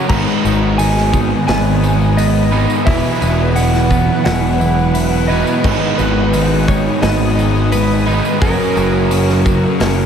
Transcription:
0.09 G#1 G#2 D#3 G#3 B3 D#4 B4 D#5 G#5 A#5 D#6, kick, crash
0.13 B4
0.28 tambourine
0.44 G#1 D#3 G#3, tambourine
0.78 G#2 D#3 G#3 G#5, open hi-hat, tambourine
0.97 snare
1.13 D#3 G#3, kick, tambourine
1.47 G#1 G#2 D#3 G#3 B3 G#5, snare, open hi-hat
1.82 D#3 G#3, tambourine
2.01 tambourine
2.17 G#2 D#3 G#3 B3 D#5, open hi-hat, tambourine
2.36 tambourine
2.52 G#2 D#3 G#3 B3 D#4 B4
2.70 tambourine
2.86 E1 E2 B2 E3 F#3 B3 E4 B4 E5 F#5, kick, open hi-hat
3.05 tambourine
3.21 E1 B2 E3 B3, tambourine
3.56 E2 B2 E3 F#5, open hi-hat, tambourine
3.74 snare
3.91 B2 E3 B3, kick, tambourine
4.24 E1 E2 B2 E3 E4 F#5, snare, open hi-hat
4.60 B2 E3, tambourine
4.79 tambourine
4.94 E2 B2 E3 E4, open hi-hat, tambourine
5.13 tambourine
5.28 B2 E3 F#3 B3 E4 B4 D#5
5.32 E2
5.47 tambourine
5.63 G#1 G#2 D#3 G#3 B3 D#4 B4 D#5 G#5 D#6, kick, crash
5.82 tambourine
5.98 G#1 D#3 G#3 B4, tambourine
6.33 G#2 D#3 G#3, open hi-hat, tambourine
6.68 D#3 G#3 C#5, kick, tambourine
7.02 G#1 G#2 D#3 G#3 B3 D#5, snare, open hi-hat
7.38 D#3 G#3, tambourine
7.55 tambourine
7.72 G#2 D#3 G#3 B3 B4, open hi-hat, tambourine
7.91 tambourine
8.06 G#2 D#3 G#3 B3 D#4 B4
8.25 tambourine
8.41 F#1 F#2 C#3 F#3 A#3 C#4 F#4 A#4 C#5 F#5 C#6, kick, open hi-hat, tambourine
8.59 tambourine
8.76 F#1 C#3 F#3, tambourine
9.10 F#2 C#3 F#3, open hi-hat, tambourine
9.29 snare, tambourine
9.45 C#3 F#3, kick, tambourine
9.74 G#4
9.80 F#1 F#2 C#3 F#3 A#3, snare, open hi-hat, tambourine

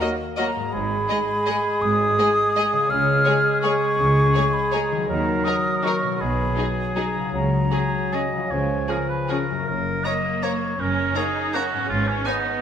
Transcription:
Already playing: D#3 A#3 F#4 D#5
0.01 F#3 A#3 A#4 D#5
0.37 F#3 A#3 F#4 A#4 D#5 A#5
0.55 G#2
0.60 G#3
0.64 G#4
0.69 G#1 D#5
0.73 G#2 G#3 G#4 B5
1.09 G#3 G#4 D#5
1.46 G#3 G#4 D#5
1.81 G#1 G#2 D#6
2.18 G#3 G#4 D#5
2.55 G#3 G#4 D#5
2.73 C#3
2.78 G#3
2.82 G#4
2.86 C#2 C#5 F6
2.90 C#3 G#3 G#4
3.25 G#3 G#4 C#5
3.62 G#3 G#4 C#5 C#6
3.99 C#2 C#3
4.34 G#3 G#4 C#5
4.53 B5
4.71 G#3 G#4 C#5 A#5
4.92 D#3
4.96 F#3
5.01 D#4
5.05 D#2 A#4 A#5
5.09 D#3 F#3 A#4
5.44 F#3 D#4 A#4 D#6
5.83 F#3 D#4 A#4 C#6
6.02 B2
6.07 F#3
6.11 D#4
6.16 B1 G#4 B5
6.21 B2 G#4
6.56 F#3 D#4 G#4
6.95 F#3 D#4 G#4 A#5
7.16 C#3
7.20 F#3
7.25 C#4
7.29 G#4
7.33 C#2 C#3 F#3 A#5
7.72 F#3 C#4 G#4
8.12 F#3 C#4 G#4 D#5 G#5
8.32 C#3
8.37 F3
8.41 C#4
8.46 C#3 G#4
8.51 C#2 F3 C#5
8.88 F3 C#4 G#4 A#4
9.09 B4
9.28 F3 C#4 G#4 A#4
9.50 F#2
9.55 A#3
9.59 C#4
9.64 F#1 A#4
9.68 F#2
10.04 A#3 C#5 D#5 A#5
10.42 A#3 C#5 A#5
10.79 F#1 F#2 C#4 A#4
11.15 A#3 D#4 G#4 C#5 A#5
11.54 A#3 C#4 F#4 C#5 A#5
11.73 G#2
11.77 B3
11.81 C#4
11.86 G#1 F4 G#4
11.91 G#2
12.08 C#4
12.25 B3 D#4 C#5 G#5

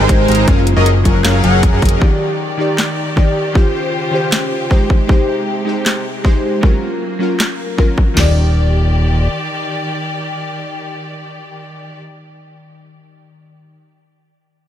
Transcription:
Already playing: C3 G#3 D#4 G4 C5
0.00 G#1 G#3 D#4 A#4 C5 G#5
0.08 G#3 D#4 G4 C5, kick, closed hi-hat
0.28 G#1 G#3 D#4 A#4 C5 A#5, closed hi-hat
0.32 closed hi-hat
0.35 closed hi-hat
0.46 F#1 F#3 A#3 C#4 F4 G#4 A#4 F5, kick, closed hi-hat
0.67 closed hi-hat
0.76 F#1 F#3 C#4 G#4 A#4 D#5
0.86 closed hi-hat
1.03 F#1 F#3 C#4 F4 G#4 A#4 F#5, kick, closed hi-hat
1.25 F#1 F#3 C#4 G#4 A#4 F5, snare, clap, closed hi-hat
1.44 F#1 F#3 C#4 G#4 A#4 F#5, closed hi-hat
1.63 kick, closed hi-hat
1.73 F#2 F#3 C#4 G#4 A#4 F#5
1.82 F#1 F#3 C#4 G#4 A#4 D#5, kick, closed hi-hat
1.85 closed hi-hat
1.89 closed hi-hat
1.99 D#3 D#4 G4 D5, kick
2.03 D5
2.57 D#3 D#4 G4
2.61 D5
2.78 snare, clap
3.16 D#3 D#4 G4 D5, kick
3.53 C#3 D#3 C#4 F4 G4 C5, kick
3.57 C5
4.11 D#3 C#4 F4 G4 C5
4.32 snare, clap
4.70 G#3 D#4 G4 C5, kick
4.90 C3 G#3, kick
5.07 G#3 D#4 G4 C5, kick
5.65 G#3 D#4 G4 C5
5.86 snare, clap
6.24 G#3 D#4 G4 C5, kick
6.61 F#3 A#3 C#4 F4, kick
6.65 A#4
7.19 F#3 C#4 F4
7.23 A#4
7.40 snare, clap
7.77 F#3 C#4 F4 A#4, kick
7.98 kick
8.14 D#1 D#3 D#4 G4 D5, snare, floor tom, crash
8.20 D5

